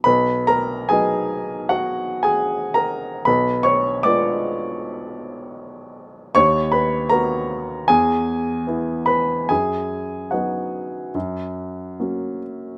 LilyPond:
<<
  \new Staff \with { instrumentName = "Grand piano" } { \time 4/4 \key fis \mixolydian \tempo 4 = 76 <b' b''>8 <ais' ais''>8 <gis' gis''>4 \tuplet 3/2 { <fis' fis''>4 <gis' gis''>8~ <gis' gis''>8 <ais' ais''>4 } | <b' b''>8 <cis'' cis'''>8 <d'' d'''>2. | <cis'' cis'''>8 <b' b''>8 <ais' ais''>4 <gis' gis''>4. <b' b''>8 | <gis' gis''>4 <fis' fis''>2~ <fis' fis''>8 r8 | }
  \new Staff \with { instrumentName = "Grand piano" } { \time 4/4 \key fis \mixolydian b,,4 <fis b dis'>2. | b,,4 <gis b f'>2. | dis,4 <b fis'>4 e,4 <b e'>4 | fis,4 <fis b dis'>4 fis,4 <fis ais cis'>4 | }
>>